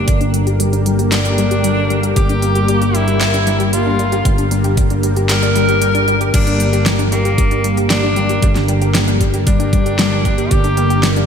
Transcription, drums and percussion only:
0.08 kick loud
0.08 closed hi-hat medium
0.21 closed hi-hat soft
0.34 closed hi-hat medium
0.47 closed hi-hat soft
0.60 closed hi-hat medium
0.73 closed hi-hat soft
0.86 closed hi-hat medium
0.99 closed hi-hat soft
1.12 snare loud
1.12 closed hi-hat medium
1.25 closed hi-hat soft
1.38 closed hi-hat medium
1.51 closed hi-hat soft
1.64 closed hi-hat loud
1.90 closed hi-hat soft
2.03 closed hi-hat soft
2.16 kick loud
2.16 closed hi-hat medium
2.29 closed hi-hat soft
2.42 closed hi-hat medium
2.55 closed hi-hat soft
2.68 closed hi-hat medium
2.82 closed hi-hat soft
2.95 closed hi-hat medium
3.08 closed hi-hat soft
3.21 snare loud
3.21 closed hi-hat medium
3.34 closed hi-hat soft
3.47 closed hi-hat medium
3.60 closed hi-hat soft
3.73 closed hi-hat medium
3.99 closed hi-hat soft
4.12 closed hi-hat soft
4.25 kick loud
4.25 closed hi-hat medium
4.38 closed hi-hat soft
4.51 closed hi-hat medium
4.64 closed hi-hat soft
4.77 kick loud
4.77 closed hi-hat medium
4.90 closed hi-hat soft
5.03 closed hi-hat medium
5.16 closed hi-hat soft
5.29 snare loud
5.29 closed hi-hat medium
5.43 closed hi-hat soft
5.56 closed hi-hat medium
5.69 closed hi-hat soft
5.82 closed hi-hat medium
5.95 closed hi-hat soft
6.08 closed hi-hat soft
6.21 closed hi-hat soft
6.34 kick loud
6.34 closed hi-hat loud
6.34 crash loud
6.47 closed hi-hat soft
6.60 closed hi-hat medium
6.73 closed hi-hat soft
6.86 snare loud
6.86 closed hi-hat medium
6.99 closed hi-hat soft
7.12 closed hi-hat medium
7.25 closed hi-hat soft
7.38 kick loud
7.38 closed hi-hat medium
7.51 closed hi-hat soft
7.64 closed hi-hat medium
7.77 closed hi-hat soft
7.90 snare loud
7.90 closed hi-hat loud
8.16 closed hi-hat soft
8.29 closed hi-hat soft
8.42 kick loud
8.42 closed hi-hat loud
8.56 snare soft
8.56 closed hi-hat soft
8.68 closed hi-hat medium
8.82 closed hi-hat soft
8.95 snare loud
8.95 closed hi-hat loud
9.08 closed hi-hat soft
9.21 kick medium
9.21 closed hi-hat medium
9.34 closed hi-hat soft
9.47 kick loud
9.47 closed hi-hat loud
9.60 closed hi-hat soft
9.73 kick loud
9.73 closed hi-hat medium
9.86 closed hi-hat soft
9.99 snare loud
9.99 closed hi-hat loud
10.25 kick medium
10.25 closed hi-hat soft
10.38 closed hi-hat soft
10.51 kick loud
10.51 closed hi-hat medium
10.64 closed hi-hat soft
10.77 closed hi-hat medium
10.90 closed hi-hat soft
11.03 snare loud
11.03 closed hi-hat medium
11.16 closed hi-hat soft

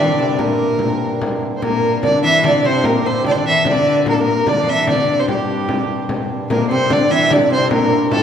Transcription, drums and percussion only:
0.39 frame drum medium
0.60 frame drum soft
0.79 frame drum medium
1.21 frame drum medium
1.62 frame drum medium
2.03 frame drum medium
2.24 frame drum soft
2.44 frame drum medium
2.84 frame drum medium
3.24 frame drum medium
3.45 frame drum soft
3.65 frame drum medium
4.06 frame drum medium
4.47 frame drum medium
4.68 frame drum soft
4.87 frame drum medium
5.28 frame drum medium
5.69 frame drum medium
6.09 frame drum medium
6.50 frame drum medium
6.90 frame drum loud
7.11 frame drum soft
7.30 frame drum loud
7.71 frame drum loud
8.11 frame drum medium

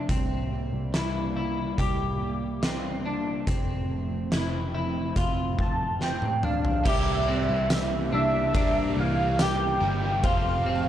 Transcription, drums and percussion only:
0.09 kick loud
0.09 closed hi-hat medium
0.94 snare medium
0.94 closed hi-hat medium
1.78 kick medium
1.78 closed hi-hat medium
2.63 snare loud
2.63 closed hi-hat medium
3.47 kick loud
3.47 closed hi-hat medium
4.32 snare loud
4.32 closed hi-hat medium
5.16 kick medium
5.16 closed hi-hat medium
5.59 kick medium
6.01 snare soft
6.22 high tom medium
6.43 mid tom medium
6.65 floor tom medium
6.86 kick loud
6.86 crash loud
7.70 snare loud
7.70 ride medium
7.70 tambourine medium
8.55 kick loud
8.55 ride medium
9.39 snare loud
9.39 ride medium
9.39 tambourine medium
10.24 kick loud
10.24 ride medium

